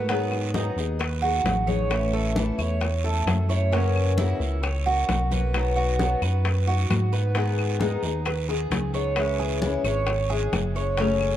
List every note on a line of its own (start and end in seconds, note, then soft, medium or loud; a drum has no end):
0.00 0.71 G#2 medium
0.09 0.53 D#3 medium
0.09 0.54 F#3 medium
0.09 0.53 B3 medium
0.09 0.54 B3 medium
0.09 0.54 D#4 medium
0.09 0.55 G#4 medium
0.09 high bongo medium
0.09 high conga soft
0.09 long guiro medium
0.32 high bongo soft
0.32 high conga soft
0.32 claves medium
0.54 0.76 D#3 medium
0.54 0.77 F#3 medium
0.54 0.77 B3 medium
0.54 0.99 D#4 medium
0.54 0.77 D#4 medium
0.54 0.76 G#4 medium
0.54 high bongo medium
0.54 high conga medium
0.54 short guiro medium
0.76 1.41 D#2 medium
0.76 0.99 B3 soft
0.76 0.99 D#4 soft
0.76 0.99 G#4 soft
0.76 high bongo soft
0.76 short guiro medium
0.99 1.22 B4 medium
0.99 muted steel-string acoustic guitar stroke soft
0.99 high bongo medium
0.99 high conga soft
0.99 long guiro medium
0.99 claves medium
1.22 1.68 B3 soft
1.22 1.66 D#4 soft
1.22 1.66 F#4 medium
1.22 1.65 G#4 soft
1.22 high bongo soft
1.22 high conga soft
1.44 2.52 A1 medium
1.44 high bongo medium
1.44 low bongo medium
1.44 high conga medium
1.44 short guiro medium
1.67 1.90 B3 soft
1.67 1.90 D#4 soft
1.67 1.89 G#4 soft
1.67 2.12 C#5 medium
1.67 high conga medium
1.67 short guiro medium
1.89 2.34 E3 medium
1.89 2.35 A3 medium
1.89 2.35 C#4 medium
1.89 2.36 E4 medium
1.89 high bongo medium
1.89 high conga soft
1.89 long guiro medium
1.89 claves medium
2.13 2.58 A4 medium
2.13 high bongo soft
2.13 high conga soft
2.35 2.58 E3 medium
2.35 2.58 A3 medium
2.35 2.58 C#4 medium
2.35 2.56 E4 medium
2.35 high bongo medium
2.35 high conga medium
2.35 short guiro medium
2.58 3.23 E2 medium
2.58 2.80 A3 soft
2.58 2.80 C#4 soft
2.58 2.80 E4 soft
2.58 3.03 C#5 medium
2.58 high conga soft
2.58 short guiro medium
2.58 claves medium
2.81 muted steel-string acoustic guitar stroke medium
2.81 high bongo medium
2.81 high conga soft
2.81 long guiro medium
3.04 3.50 A3 soft
3.04 3.49 C#4 soft
3.04 3.47 E4 soft
3.04 3.48 A4 medium
3.04 high bongo soft
3.04 high conga soft
3.26 4.34 F#2 medium
3.26 high bongo medium
3.26 low bongo medium
3.26 high conga medium
3.26 short guiro medium
3.26 claves medium
3.49 3.72 A3 soft
3.49 3.72 C#4 soft
3.49 3.71 E4 medium
3.49 3.72 C#5 medium
3.49 high bongo soft
3.49 high conga soft
3.49 short guiro medium
3.71 4.16 C#3 medium
3.71 4.17 E3 medium
3.71 4.17 A#3 medium
3.71 4.17 C#4 medium
3.71 4.18 C#4 medium
3.71 4.18 F#4 medium
3.71 high bongo medium
3.71 high conga soft
3.71 long guiro medium
3.95 high bongo soft
3.95 high conga soft
3.95 claves medium
4.17 4.40 C#3 medium
4.17 4.40 E3 medium
4.17 4.40 A#3 medium
4.17 4.40 C#4 medium
4.17 4.62 E4 medium
4.17 4.39 F#4 medium
4.17 high bongo medium
4.17 high conga medium
4.17 short guiro medium
4.40 5.04 C#2 medium
4.40 4.63 A#3 soft
4.40 4.63 C#4 soft
4.40 4.62 F#4 soft
4.40 high bongo soft
4.40 short guiro medium
4.63 4.85 C#5 medium
4.63 muted steel-string acoustic guitar stroke medium
4.63 high bongo medium
4.63 high conga soft
4.63 long guiro medium
4.63 claves medium
4.86 5.31 A#3 soft
4.86 5.31 C#4 soft
4.86 5.30 F#4 soft
4.86 5.30 F#4 medium
4.86 high bongo soft
4.86 high conga soft
5.09 6.16 B1 medium
5.09 high bongo medium
5.09 low bongo medium
5.09 high conga medium
5.09 short guiro medium
5.31 5.54 A#3 soft
5.31 5.54 C#4 soft
5.31 5.53 F#4 medium
5.31 5.76 B4 medium
5.31 high conga medium
5.31 short guiro medium
5.54 5.97 B2 medium
5.54 5.98 F#3 medium
5.54 5.99 B3 medium
5.54 5.99 D#4 medium
5.54 6.00 F#4 medium
5.54 high bongo medium
5.54 high conga soft
5.54 long guiro medium
5.54 claves medium
5.76 6.21 F#4 medium
5.76 high bongo soft
5.76 high conga soft
5.99 6.21 B2 medium
5.99 6.21 F#3 medium
5.99 6.22 B3 medium
5.99 6.22 D#4 medium
5.99 6.20 F#4 medium
5.99 high bongo medium
5.99 high conga medium
5.99 short guiro medium
6.22 6.86 F#2 medium
6.22 6.44 B3 soft
6.22 6.44 D#4 soft
6.22 6.44 F#4 soft
6.22 6.66 B4 medium
6.22 high conga soft
6.22 short guiro medium
6.22 claves medium
6.44 muted steel-string acoustic guitar stroke medium
6.44 high bongo medium
6.44 high conga soft
6.44 long guiro medium
6.66 7.13 B3 soft
6.66 7.12 D#4 soft
6.66 7.11 F#4 medium
6.66 7.12 F#4 medium
6.66 high bongo soft
6.66 high conga soft
6.90 7.97 G#2 medium
6.90 high bongo medium
6.90 low bongo medium
6.90 high conga medium
6.90 short guiro medium
6.90 claves medium
7.12 7.35 B3 soft
7.12 7.35 D#4 soft
7.12 7.34 F#4 soft
7.12 7.35 B4 medium
7.12 high bongo soft
7.12 high conga soft
7.12 short guiro medium
7.34 7.79 D#3 medium
7.34 7.80 G#3 medium
7.34 7.80 B3 medium
7.34 7.81 D#4 medium
7.34 7.81 G#4 medium
7.34 high bongo medium
7.34 high conga soft
7.34 long guiro medium
7.58 high bongo soft
7.58 high conga soft
7.58 claves medium
7.80 8.02 D#3 medium
7.80 8.03 G#3 medium
7.80 8.03 B3 medium
7.80 8.25 D#4 medium
7.80 8.03 D#4 medium
7.80 8.02 G#4 medium
7.80 high bongo medium
7.80 high conga medium
7.80 short guiro medium
8.03 8.67 D#2 medium
8.03 8.26 B3 soft
8.03 8.26 D#4 soft
8.03 8.25 G#4 soft
8.03 high bongo soft
8.03 short guiro medium
8.25 8.49 B4 medium
8.25 muted steel-string acoustic guitar stroke medium
8.25 high bongo medium
8.25 high conga soft
8.25 long guiro medium
8.25 claves medium
8.49 8.94 B3 soft
8.49 8.93 D#4 soft
8.49 8.92 G#4 medium
8.49 8.93 G#4 medium
8.49 high bongo soft
8.49 high conga soft
8.70 9.78 C#2 medium
8.70 high bongo medium
8.70 low bongo medium
8.70 high conga medium
8.70 short guiro medium
8.93 9.17 B3 soft
8.93 9.16 D#4 soft
8.93 9.16 G#4 soft
8.93 9.38 C#5 medium
8.93 short guiro medium
9.16 9.60 C#3 medium
9.16 9.61 E3 medium
9.16 9.61 G#3 medium
9.16 9.62 C#4 medium
9.16 9.62 E4 medium
9.16 high bongo medium
9.16 high conga soft
9.16 long guiro medium
9.16 claves medium
9.39 9.84 G#4 medium
9.39 high bongo soft
9.39 high conga soft
9.61 9.84 C#3 medium
9.61 9.84 E3 medium
9.61 9.84 G#3 medium
9.61 9.83 C#4 medium
9.61 9.82 E4 medium
9.61 high bongo medium
9.61 high conga medium
9.61 short guiro medium
9.84 10.49 G#1 loud
9.84 10.07 G#3 soft
9.84 10.07 C#4 soft
9.84 10.06 E4 soft
9.84 10.29 C#5 medium
9.84 high conga soft
9.84 short guiro medium
9.84 claves medium
10.07 muted steel-string acoustic guitar stroke medium
10.07 high bongo medium
10.07 high conga soft
10.07 long guiro medium
10.30 10.75 G#3 soft
10.30 10.75 C#4 soft
10.30 10.73 E4 soft
10.30 10.74 G#4 medium
10.30 high bongo soft
10.30 high conga soft
10.52 11.37 F#1 medium
10.52 high bongo medium
10.52 low bongo medium
10.52 high conga medium
10.52 short guiro medium
10.52 claves medium
10.75 10.98 G#3 soft
10.75 10.98 C#4 soft
10.75 10.97 E4 medium
10.75 10.98 C#5 medium
10.75 high bongo soft
10.75 high conga soft
10.75 short guiro medium
10.97 11.37 C#3 medium
10.97 11.37 F#3 medium
10.97 11.37 A3 medium
10.97 11.37 C#4 medium
10.97 11.37 G#4 medium
10.97 high bongo medium
10.97 high conga soft
10.97 long guiro medium
11.20 high bongo soft
11.20 high conga soft
11.20 claves medium